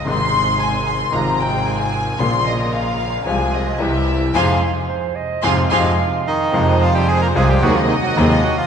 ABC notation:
X:1
M:4/4
L:1/16
Q:1/4=111
K:Fm
V:1 name="Violin section"
c'4 a2 c'2 b2 g2 a4 | c'2 e2 f4 a2 e2 =e4 | [fac']2 z6 [fac']2 [fac']2 z4 | c8 e8 |]
V:2 name="Clarinet"
z16 | z16 | z4 c2 e2 f2 e2 f4 | z16 |]
V:3 name="String section"
[CEA]8 [CFA]8 | [DFB]8 [CFA]4 [C=EG]4 | [CFA]2 z6 [CFA]2 [CFA]2 z4 | [CFA]6 [CFA]2 [C_GA]2 z2 [CGA]2 z2 |]
V:4 name="Bandoneon"
z16 | z16 | z12 z2 [E,E]2- | [E,E]2 [F,F] [G,G] [A,A] [B,B] [A,A] [G,G] [_G,_G] [F,F] [E,E] [G,G] [E,E] [F,F] [G,G] [F,F] |]
V:5 name="Grand piano" clef=bass
[A,,,A,,C,E,A,E]8 [A,,,A,,C,F,A,F]8 | [B,,,B,,D,F,B,F]8 [C,,C,F,A,F]4 [C,,C,=E,G,=E]4 | [A,,C,F,]2 z6 [A,,C,F,]2 [A,,C,F,]2 z4 | [F,,C,F,A,F]6 [C,,C,F,A,F]2 [E,,C,E,_G,A,E]2 z2 [E,,C,E,G,A,E]2 z2 |]
V:6 name="Double bass" clef=bass
A,,,8 A,,,8 | B,,,8 C,,4 C,,4 | F,,2 z6 F,,2 F,,2 z4 | F,,6 C,,2 E,,2 z2 E,,2 z2 |]